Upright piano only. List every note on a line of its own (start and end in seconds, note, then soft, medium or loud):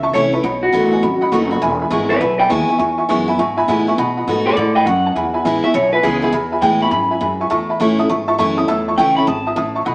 0.03 0.09 E5 loud
0.03 0.10 A5 loud
0.03 0.10 C#6 loud
0.14 0.26 E5 medium
0.14 0.26 A5 medium
0.14 0.26 C#6 loud
0.33 0.39 E5 medium
0.33 0.40 A5 medium
0.33 0.40 C#6 medium
0.44 0.55 D#5 medium
0.44 0.55 F#5 medium
0.44 0.56 B5 loud
0.62 0.69 D#5 medium
0.62 0.69 F#5 medium
0.62 0.69 B5 medium
0.73 0.84 D#5 medium
0.73 0.84 F#5 medium
0.73 0.85 B5 medium
0.92 0.98 D#5 medium
0.92 0.99 F#5 medium
0.92 0.99 G#5 medium
1.02 1.14 D#5 medium
1.02 1.14 F#5 medium
1.02 1.14 B5 loud
1.21 1.28 D#5 loud
1.21 1.28 F#5 loud
1.21 1.28 B5 loud
1.32 1.43 D#5 loud
1.32 1.43 F#5 medium
1.32 1.44 C#6 loud
1.51 1.57 D#5 medium
1.51 1.57 F#5 medium
1.51 1.58 B5 loud
1.62 1.73 E5 loud
1.62 1.73 G#5 loud
1.62 1.73 B5 loud
1.81 1.87 E5 medium
1.81 1.88 G#5 medium
1.81 1.88 B5 loud
1.92 2.03 E5 medium
1.92 2.03 G#5 medium
1.92 2.03 C#6 loud
2.10 2.16 E5 medium
2.10 2.17 G#5 medium
2.10 2.17 C#6 medium
2.21 2.32 E5 medium
2.21 2.32 G#5 medium
2.21 2.33 B5 medium
2.39 2.46 E5 loud
2.39 2.46 G#5 medium
2.39 2.46 B5 loud
2.49 2.61 E5 medium
2.49 2.62 G#5 medium
2.49 2.62 C#6 loud
2.69 2.75 E5 medium
2.69 2.76 G#5 medium
2.69 2.76 C#6 medium
2.78 2.90 E5 medium
2.78 2.91 G#5 medium
2.78 2.91 C#6 loud
2.98 3.05 E5 medium
2.98 3.05 G#5 medium
2.98 3.05 C#6 loud
3.09 3.20 E5 medium
3.09 3.20 G#5 medium
3.09 3.21 C#6 loud
3.28 3.34 E5 loud
3.28 3.35 G#5 medium
3.28 3.35 B5 loud
3.39 3.50 E5 loud
3.39 3.50 G#5 medium
3.39 3.50 C#6 loud
3.57 3.64 E5 loud
3.57 3.64 G#5 loud
3.57 3.64 B5 loud
3.69 3.80 E5 loud
3.69 3.80 G#5 loud
3.69 3.80 B5 loud
3.88 3.94 E5 medium
3.88 3.94 G#5 medium
3.88 3.94 C#6 loud
3.98 4.09 D#5 loud
3.98 4.09 F#5 loud
3.98 4.09 B5 loud
4.17 4.23 D#5 medium
4.17 4.23 F#5 medium
4.17 4.23 B5 medium
4.28 4.39 D#5 loud
4.28 4.39 F#5 medium
4.28 4.40 B5 loud
4.46 4.52 D#5 medium
4.46 4.53 F#5 medium
4.46 4.53 B5 medium
4.57 4.68 D#5 medium
4.57 4.69 F#5 medium
4.57 4.69 B5 medium
4.75 4.82 D#5 loud
4.75 4.82 F#5 medium
4.75 4.82 B5 loud
4.87 4.98 D#5 medium
4.87 4.98 F#5 medium
4.87 4.98 C#6 loud
5.05 5.12 D#5 medium
5.05 5.12 F#5 medium
5.05 5.12 A5 medium
5.15 5.27 E5 medium
5.15 5.27 G#5 medium
5.15 5.27 B5 loud
5.33 5.40 E5 medium
5.33 5.41 G#5 medium
5.33 5.41 B5 loud
5.45 5.56 E5 loud
5.45 5.56 G#5 medium
5.45 5.56 B5 loud
5.63 5.70 E5 medium
5.63 5.70 G#5 medium
5.63 5.70 C#6 medium
5.74 5.85 E5 medium
5.74 5.86 G#5 medium
5.74 5.86 B5 medium
5.93 5.99 E5 loud
5.93 5.99 G#5 medium
5.93 6.00 B5 loud
6.03 6.15 E5 medium
6.03 6.15 G#5 medium
6.03 6.15 B5 loud
6.22 6.29 E5 medium
6.22 6.29 G#5 medium
6.22 6.29 B5 medium
6.33 6.44 E5 medium
6.33 6.45 G#5 medium
6.33 6.45 B5 loud
6.52 6.58 E5 medium
6.52 6.59 G#5 medium
6.52 6.59 B5 loud
6.62 6.74 E5 medium
6.62 6.74 G#5 medium
6.62 6.74 B5 medium
6.82 6.88 E5 medium
6.82 6.88 G#5 medium
6.82 6.88 C#6 medium
6.92 7.04 E5 medium
6.92 7.04 G#5 medium
6.92 7.04 B5 medium
7.11 7.17 E5 medium
7.11 7.17 G#5 medium
7.11 7.18 B5 loud
7.21 7.33 E5 medium
7.21 7.33 G#5 medium
7.21 7.33 B5 medium
7.41 7.47 E5 medium
7.41 7.47 G#5 medium
7.41 7.47 C#6 loud
7.51 7.62 E5 loud
7.51 7.62 A5 loud
7.51 7.62 C#6 loud
7.70 7.76 E5 medium
7.70 7.76 A5 medium
7.70 7.76 B5 loud
7.80 7.92 E5 medium
7.80 7.92 A5 medium
7.80 7.92 C#6 loud
7.99 8.05 E5 medium
7.99 8.06 A5 medium
7.99 8.06 D#6 loud
8.09 8.21 E5 loud
8.09 8.21 A5 medium
8.09 8.21 C#6 loud
8.28 8.34 E5 loud
8.28 8.35 A5 loud
8.28 8.35 C#6 loud
8.38 8.50 E5 loud
8.38 8.50 A5 loud
8.38 8.50 C#6 loud
8.57 8.64 E5 medium
8.57 8.64 A5 medium
8.57 8.64 D#6 loud
8.68 8.79 E5 loud
8.68 8.80 A5 loud
8.68 8.80 E6 loud
8.88 8.94 E5 medium
8.88 8.94 A5 medium
8.88 8.94 C#6 loud
8.98 9.10 E5 medium
8.98 9.10 A5 medium
8.98 9.10 C#6 medium
9.18 9.24 E5 medium
9.18 9.24 A5 medium
9.18 9.24 C#6 medium
9.28 9.39 E5 medium
9.28 9.39 A5 medium
9.28 9.39 D#6 medium
9.46 9.53 E5 medium
9.46 9.53 A5 medium
9.46 9.53 D#6 loud
9.56 9.68 E5 medium
9.56 9.68 A5 medium
9.56 9.68 D#6 loud
9.75 9.82 E5 medium
9.75 9.82 A5 medium
9.75 9.82 C#6 loud
9.85 9.95 D#5 loud
9.85 9.95 F#5 loud
9.85 9.95 B5 loud